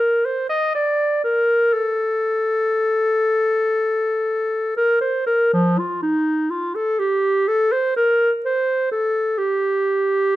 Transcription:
0.00 0.27 A#4 medium
0.25 0.49 C5 medium
0.49 0.74 D#5 medium
0.75 1.23 D5 medium
1.24 1.75 A#4 medium
1.73 4.76 A4 medium
4.76 5.00 A#4 medium
5.01 5.25 C5 medium
5.27 5.52 A#4 medium
5.53 5.80 F3 medium
5.79 6.02 F4 medium
6.02 6.52 D#4 medium
6.51 6.77 F4 medium
6.75 7.01 A4 medium
6.99 7.49 G4 medium
7.48 7.74 A4 medium
7.72 7.96 C5 medium
7.96 8.31 A#4 medium
8.45 8.90 C5 medium
8.92 9.39 A4 medium
9.38 10.36 G4 medium

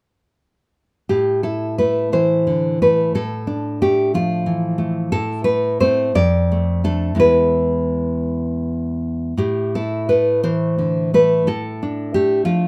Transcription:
1.09 3.09 A2 soft
1.09 1.43 G4 medium
1.43 2.46 E4 soft
1.43 1.77 A4 soft
1.78 2.46 A3 soft
1.78 2.11 B4 soft
2.13 3.13 E3 soft
2.13 2.77 C5 medium
2.47 2.81 D3 soft
2.82 3.14 A3 soft
2.82 3.13 B4 medium
3.15 5.08 A2 soft
3.15 3.78 A4 medium
3.47 4.46 D4 soft
3.82 4.77 A3 soft
3.82 4.13 G4 medium
4.14 5.12 F3 soft
4.14 5.08 F4 medium
4.46 5.11 E3 soft
4.78 5.11 A3 soft
5.12 6.11 A2 soft
5.12 5.44 A4 medium
5.44 5.80 A3 soft
5.44 5.78 B4 medium
5.80 6.11 A3 soft
5.80 6.11 C4 soft
5.80 6.13 C5 medium
6.15 7.14 F2 soft
6.15 6.81 D5 medium
6.52 6.83 A3 soft
6.84 7.16 A3 soft
6.84 7.16 D4 soft
6.84 7.18 A4 medium
7.15 9.33 E2 soft
7.15 9.33 G#3 soft
7.15 9.34 E4 soft
7.20 8.98 B4 medium
9.37 11.42 A2 soft
9.37 9.73 G4 medium
9.75 10.78 E4 soft
9.75 10.08 A4 soft
10.09 10.78 A3 soft
10.09 10.42 B4 medium
10.44 11.47 E3 soft
10.44 11.09 C5 medium
10.78 11.13 D3 soft
11.14 11.47 A3 soft
11.14 11.46 B4 medium
11.47 12.45 A2 soft
11.47 12.12 A4 medium
11.83 12.68 D4 soft
12.14 12.68 A3 soft
12.14 12.45 G4 medium
12.45 12.68 F3 soft
12.45 12.68 F4 medium

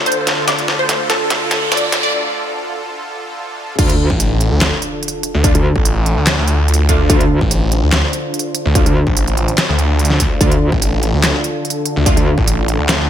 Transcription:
0.00 3.75 D2 medium
0.00 3.75 D3 medium
0.00 3.75 F4 medium
0.00 3.75 A4 medium
0.00 riser medium
0.06 0.33 C5 medium
0.06 closed hi-hat soft
0.12 closed hi-hat medium
0.27 snare medium
0.27 closed hi-hat medium
0.48 0.67 D5 loud
0.48 snare medium
0.48 closed hi-hat medium
0.58 closed hi-hat soft
0.68 snare medium
0.79 0.99 C5 medium
0.89 snare medium
0.89 closed hi-hat medium
1.10 1.29 A4 loud
1.10 snare medium
1.10 closed hi-hat soft
1.30 snare medium
1.30 closed hi-hat medium
1.51 snare medium
1.51 closed hi-hat medium
1.72 1.91 D5 loud
1.72 snare medium
1.72 closed hi-hat medium
1.77 closed hi-hat medium
1.92 snare medium
1.92 closed hi-hat medium
2.03 2.13 D5 medium
3.78 4.08 D2 medium
3.78 13.10 D3 medium
3.78 3.93 A3 medium
3.78 3.93 D4 medium
3.78 13.10 D4 medium
3.78 3.93 F4 medium
3.78 13.10 F4 medium
3.78 7.09 A4 medium
3.78 kick loud
3.78 closed hi-hat medium
3.78 crash loud
3.78 sub drop medium
3.89 closed hi-hat medium
4.10 4.50 A1 loud
4.10 kick medium
4.20 closed hi-hat medium
4.41 closed hi-hat medium
4.51 4.70 D2 loud
4.61 snare loud
4.61 clap medium
4.61 closed hi-hat medium
4.82 closed hi-hat medium
5.03 closed hi-hat medium
5.08 closed hi-hat medium
5.23 closed hi-hat medium
5.34 5.53 D2 loud
5.44 5.53 A3 medium
5.44 5.53 D4 medium
5.44 5.53 F4 medium
5.44 kick loud
5.44 closed hi-hat medium
5.55 5.74 D2 loud
5.55 closed hi-hat medium
5.76 6.15 A1 loud
5.76 kick medium
5.85 closed hi-hat medium
6.06 closed hi-hat medium
6.17 6.36 D2 loud
6.27 snare loud
6.27 clap medium
6.27 closed hi-hat medium
6.38 6.67 D2 loud
6.48 closed hi-hat medium
6.68 7.08 D2 loud
6.68 closed hi-hat soft
6.74 closed hi-hat medium
6.89 7.03 A3 medium
6.89 7.03 D4 medium
6.89 7.03 F4 medium
6.89 kick medium
6.89 closed hi-hat medium
7.10 7.39 D2 loud
7.10 7.24 A3 medium
7.10 7.24 D4 medium
7.10 7.24 F4 medium
7.10 10.39 C5 medium
7.10 kick loud
7.10 closed hi-hat medium
7.21 closed hi-hat medium
7.41 7.81 A1 loud
7.41 kick medium
7.51 closed hi-hat medium
7.72 closed hi-hat medium
7.83 8.02 D2 loud
7.92 snare loud
7.92 clap medium
7.92 closed hi-hat medium
8.13 closed hi-hat medium
8.34 closed hi-hat soft
8.39 closed hi-hat medium
8.55 closed hi-hat medium
8.65 8.84 D2 loud
8.75 8.84 A3 medium
8.75 8.84 D4 medium
8.75 8.84 F4 medium
8.75 kick loud
8.75 closed hi-hat medium
8.86 9.05 D2 loud
8.86 closed hi-hat soft
9.07 9.46 A1 loud
9.07 kick medium
9.17 closed hi-hat medium
9.28 closed hi-hat soft
9.37 closed hi-hat soft
9.48 closed hi-hat soft
9.58 snare loud
9.58 clap medium
9.58 closed hi-hat medium
9.69 10.29 D2 loud
9.79 closed hi-hat medium
9.99 closed hi-hat soft
10.05 closed hi-hat medium
10.10 snare soft
10.20 kick medium
10.20 closed hi-hat medium
10.41 10.70 D2 loud
10.41 10.55 A3 medium
10.41 10.55 D4 medium
10.41 10.55 F4 medium
10.41 13.10 A4 medium
10.41 kick loud
10.41 closed hi-hat medium
10.52 closed hi-hat medium
10.72 11.12 A1 loud
10.72 kick medium
10.82 closed hi-hat medium
11.03 closed hi-hat medium
11.14 11.33 D2 medium
11.23 snare loud
11.23 clap medium
11.23 closed hi-hat medium
11.44 closed hi-hat medium
11.65 closed hi-hat soft
11.70 closed hi-hat medium
11.86 closed hi-hat medium
11.96 12.15 D2 loud
12.06 12.15 A3 medium
12.06 12.15 D4 medium
12.06 12.15 F4 medium
12.06 kick loud
12.06 closed hi-hat medium
12.17 12.36 D2 loud
12.17 closed hi-hat medium
12.38 12.77 A1 loud
12.38 kick medium
12.48 closed hi-hat medium
12.68 closed hi-hat soft
12.79 12.98 D2 loud
12.89 snare loud
12.89 clap medium
12.89 closed hi-hat medium
13.00 13.10 D2 medium

